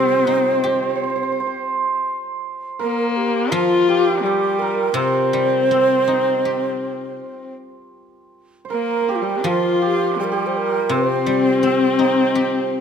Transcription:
Already playing: guzheng C3 G3 C4, horsehead fiddle C4, hammered dulcimer F4 G4 A#4, xiao C5
0.05 hammered dulcimer C5
0.11 hammered dulcimer C5
0.20 hammered dulcimer C5
0.25 guzheng D#4, hammered dulcimer C5
0.31 hammered dulcimer C5
0.38 hammered dulcimer C5
0.46 hammered dulcimer C5
0.53 hammered dulcimer C5
0.60 guzheng G4, hammered dulcimer C5
0.66 hammered dulcimer C5
0.74 hammered dulcimer C5
0.83 hammered dulcimer C5
0.90 hammered dulcimer C5
0.96 hammered dulcimer C5
1.04 hammered dulcimer C5
1.10 hammered dulcimer C5
1.16 hammered dulcimer C5
1.23 hammered dulcimer C5
1.32 hammered dulcimer C5
1.40 hammered dulcimer C5
1.47 hammered dulcimer C5
2.79 horsehead fiddle A#3, hammered dulcimer A#4, xiao A#4
3.12 xiao A#4
3.17 xiao G4
3.51 guzheng F3, hammered dulcimer F4, horsehead fiddle F4, xiao F4
3.88 xiao G4, hammered dulcimer G4
4.23 horsehead fiddle G3, xiao G4, hammered dulcimer G4
4.59 xiao A#4, hammered dulcimer A#4
4.94 guzheng C3, horsehead fiddle C4, xiao C5, hammered dulcimer C5
5.33 guzheng G3
5.71 guzheng C4
6.08 guzheng D#4
6.45 guzheng G4
8.65 hammered dulcimer C5
8.70 horsehead fiddle A#3, hammered dulcimer A#4, xiao A#4
9.01 hammered dulcimer A#4
9.09 hammered dulcimer G4, xiao G4
9.15 xiao F4
9.22 horsehead fiddle G3, xiao G4
9.42 guzheng F3, horsehead fiddle F4, hammered dulcimer F4
9.48 xiao F4
9.82 hammered dulcimer G4, xiao G4
10.18 horsehead fiddle G3, hammered dulcimer G4, xiao G4
10.24 xiao A#4
10.32 hammered dulcimer G4, xiao G4
10.47 xiao C5
10.57 xiao A#4
10.89 guzheng C3, horsehead fiddle C4, hammered dulcimer C5
10.94 xiao C5
11.26 guzheng G3
11.63 guzheng C4
11.99 guzheng D#4
12.35 guzheng G4

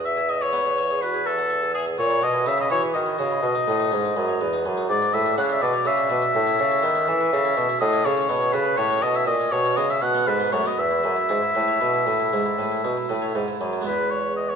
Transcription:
Already playing: bassoon E2, harpsichord E2
0.05 oboe E5, harpsichord E5
0.17 harpsichord G#4
0.29 oboe D#5, harpsichord E5
0.41 harpsichord G#4, oboe C#5
0.53 harpsichord B3
0.66 harpsichord G#4
0.78 harpsichord E5
0.91 harpsichord G#4
1.02 harpsichord F#4, oboe B4
1.14 harpsichord G#4
1.26 oboe A4, harpsichord E5
1.38 harpsichord F#5
1.50 harpsichord E5
1.62 harpsichord G#4
1.74 oboe G#4, harpsichord E5
1.86 harpsichord G#4
1.98 harpsichord A#2, bassoon A#2, oboe C#5
2.10 harpsichord E4
2.21 harpsichord B2 F#4, bassoon B2, oboe D#5
2.34 harpsichord E4
2.46 harpsichord C#3 D#4, bassoon C#3, oboe E5
2.58 harpsichord E4, oboe D#5
2.70 harpsichord E3 F#4, bassoon E3, oboe C#5
2.82 harpsichord G#4
2.94 harpsichord D#3 F#4, bassoon D#3, oboe D#5
3.06 harpsichord E4
3.19 harpsichord C#3 F#4, bassoon C#3
3.31 harpsichord E4
3.42 harpsichord B2, bassoon B2
3.55 harpsichord D#4
3.67 harpsichord A2 B4, bassoon A2
3.80 harpsichord D#4
3.92 harpsichord G#2 C#4, bassoon G#2
4.05 harpsichord D#4
4.16 bassoon F#2, harpsichord F#2 B4
4.29 harpsichord C#5
4.41 bassoon E2, harpsichord E2 B4
4.53 harpsichord D#4
4.65 harpsichord F#2 B4, bassoon F#2
4.77 harpsichord D#4
4.89 bassoon G#2, harpsichord G#2, oboe D5
5.02 harpsichord D4
5.13 bassoon A2, harpsichord A2 B4, oboe E5
5.26 harpsichord D4
5.37 bassoon C#3, harpsichord C#3 C#4, oboe F#5
5.49 harpsichord D4, oboe E5
5.61 harpsichord B2 B4, bassoon B2, oboe D5
5.73 harpsichord C#5
5.85 harpsichord C#3 B4, bassoon C#3, oboe E5
5.98 harpsichord D4
6.10 harpsichord B2 B4, bassoon B2
6.22 harpsichord D4
6.34 harpsichord A2, bassoon A2
6.47 harpsichord C#4
6.59 harpsichord C#3 A4, bassoon C#3
6.71 harpsichord C#4
6.83 harpsichord D#3 B3, bassoon D#3
6.95 harpsichord C#4
7.08 harpsichord E3 A4, bassoon E3
7.21 harpsichord B4
7.33 bassoon C#3, harpsichord C#3 A4
7.45 harpsichord C#4
7.57 bassoon B2, harpsichord B2 A4
7.69 harpsichord C#4
7.80 bassoon A2, harpsichord A2, oboe D#5
7.93 harpsichord C#4
8.05 bassoon C#3, harpsichord C#3 A4, oboe C#5
8.17 harpsichord C#4
8.29 bassoon B2, harpsichord B2 B3
8.41 harpsichord C#4
8.53 bassoon C#3, harpsichord C#3 A4, oboe B4
8.65 harpsichord B4
8.77 harpsichord A2 A4, bassoon A2, oboe C#5
8.90 harpsichord C#4
9.02 bassoon B2, harpsichord B2 A4, oboe D#5
9.14 harpsichord C#4, oboe E5
9.27 bassoon A#2, harpsichord A#2, oboe D#5
9.40 harpsichord C#4
9.52 bassoon B2, harpsichord B2 G4, oboe C#5
9.65 harpsichord C#4
9.77 bassoon C#3, harpsichord C#3 B3, oboe D#5
9.90 harpsichord C#4, oboe E5
10.02 bassoon B2, harpsichord B2, oboe F#5
10.15 harpsichord B3
10.27 bassoon G#2, harpsichord G#2 A4, oboe B4
10.40 harpsichord B3
10.52 harpsichord F#2 A3, bassoon F#2, oboe C#5
10.65 harpsichord B3, oboe D#5
10.77 harpsichord E2, bassoon E2, oboe E5
10.91 harpsichord E4
11.03 harpsichord F#2 B4, bassoon F#2
11.17 harpsichord E4
11.29 harpsichord G#2 D#4, bassoon G#2
11.42 harpsichord E4
11.55 harpsichord A2 B4, bassoon A2
11.68 harpsichord C#5
11.81 harpsichord B2 B4, bassoon B2
11.93 harpsichord E4
12.07 harpsichord A2 B4, bassoon A2
12.20 harpsichord E4
12.32 bassoon G#2, harpsichord G#2 G#3
12.46 harpsichord E4
12.58 bassoon A2, harpsichord A2 B4
12.72 harpsichord E4
12.84 bassoon B2, harpsichord B2 D#4
12.97 harpsichord E4
13.09 harpsichord A2 B4, bassoon A2
13.22 harpsichord C#5
13.35 bassoon G#2, harpsichord G#2 B4
13.48 harpsichord E4
13.61 bassoon F#2, harpsichord F#2 B4
13.73 harpsichord E4
13.81 harpsichord G#3 B3 E4
13.86 harpsichord E2, bassoon E2, oboe B4
14.11 oboe C#5
14.36 oboe D#5
14.49 oboe C#5

